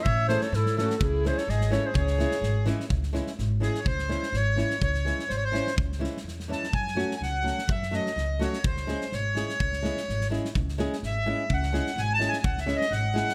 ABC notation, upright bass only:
X:1
M:2/4
L:1/8
Q:1/4=126
K:C#m
V:1 name="Upright bass" clef=bass
A,,,2 G,,2 | C,,2 G,,,2 | C,,2 G,,,2 | C,,2 G,,,2 |
C,,2 G,,,2 | C,,2 G,,,2 | C,,2 E,,2 | F,,2 C,,2 |
F,,2 C,,2 | C,,2 G,,,2 | C,,2 G,,,2 | C,,2 G,,,2 |
C,,2 G,,,2 | C,,2 G,,,2 |]